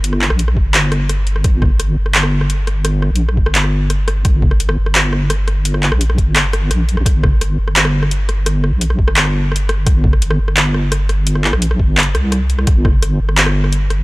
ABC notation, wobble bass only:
X:1
M:4/4
L:1/16
Q:1/4=171
K:Gm
V:1 name="Wobble bass" clef=bass
G,,,3 B,,,3 G,,,8- G,,,2 | G,,,6 G,,,8- G,,,2- | G,,,3 B,,,3 G,,,8- G,,,2 | G,,,6 G,,,8- G,,,2- |
G,,,3 B,,,3 G,,,6 B,,,3 B,,, | G,,,6 G,,,8- G,,,2- | G,,,3 B,,,3 G,,,8- G,,,2 | G,,,6 G,,,8- G,,,2- |
G,,,3 B,,,3 G,,,4 C,,6 | G,,,6 G,,,8- G,,,2 |]